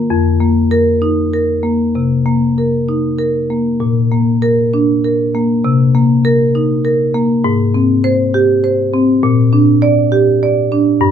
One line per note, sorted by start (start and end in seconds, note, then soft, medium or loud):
0.10 1.92 F2 medium
0.41 0.90 A#3 soft
0.71 1.21 A#4 medium
1.02 1.52 D#4 soft
1.33 1.83 A#4 soft
1.63 2.14 A#3 soft
1.95 2.45 C3 soft
2.26 2.76 A#3 soft
2.58 3.07 A#4 soft
2.89 3.38 D#4 soft
3.18 3.69 A#4 soft
3.50 3.81 A#3 soft
3.80 5.59 A#2 medium
4.11 4.61 A#3 soft
4.42 4.91 A#4 medium
4.74 5.22 D4 soft
5.04 5.52 A#4 soft
5.35 5.64 A#3 soft
5.64 7.40 C3 medium
5.95 6.42 A#3 soft
6.25 6.72 A#4 medium
6.55 7.02 D#4 soft
6.85 7.32 A#4 soft
7.14 7.44 A#3 soft
7.44 9.19 G#2 medium
7.74 8.22 C4 soft
8.04 8.51 C5 medium
8.34 8.81 G4 medium
8.64 9.11 C5 medium
8.93 9.23 C4 soft
9.23 10.97 A#2 medium
9.53 10.00 D4 medium
9.82 10.30 D5 medium
10.12 10.59 G4 soft
10.43 10.90 D5 medium
10.72 11.01 D4 medium
11.01 11.11 G2 medium